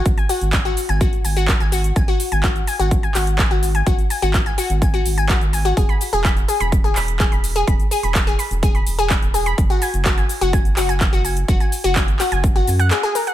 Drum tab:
HH |xxoxxxoxxxoxxxox|xxoxxxoxxxoxxxox|xxoxxxoxxxoxxxox|xxoxxxoxxxoxxxox|
SH |xxxxxxxxxxxxxxxx|xxxxxxxxxxxxxxxx|xxxxxxxxxxxxxxxx|xxxxxxxxxxxxxxxx|
CP |----x-------x---|----x-----x-x---|----x-------x---|----x-----x-x---|
BD |o---o---o---o---|o---o---o---o---|o---o---o---o---|o---o---o---o---|

HH |xxoxxxoxxxoxxxox|xxoxxxoxxxoxxxox|xxoxxxoxxxoxxxox|
SH |xxxxxxxxxxxxxxxx|xxxxxxxxxxxxxxxx|xxxxxxxxxxxxxxxx|
CP |----x-------x---|----x-----x-x---|----x-x-----x---|
BD |o---o---o---o---|o---o---o---o---|o---o---o-------|